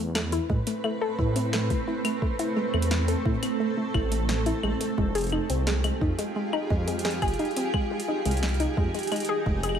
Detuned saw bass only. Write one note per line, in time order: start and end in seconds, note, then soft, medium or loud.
0.00 0.39 E2 medium
0.50 0.60 A2 loud
1.19 1.72 A2 loud
1.70 1.81 A1 loud
2.74 3.15 E2 medium
3.25 3.36 A2 medium
3.94 4.53 A1 medium
4.63 4.74 A1 medium
4.98 5.39 F1 loud
5.50 5.90 C2 medium
6.01 6.12 F2 medium
6.70 7.24 F2 loud
7.22 7.32 F1 loud
8.25 8.66 C2 medium
8.77 8.88 F2 medium
9.46 9.79 F1 medium